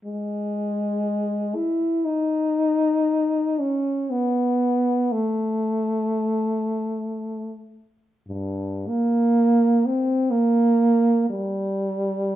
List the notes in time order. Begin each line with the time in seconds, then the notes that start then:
0.05 G#3
1.55 E4
2.05 D#4
3.60 C#4
4.10 B3
5.12 A3
8.28 G2
8.88 A#3
9.86 C4
10.31 A#3
11.30 G3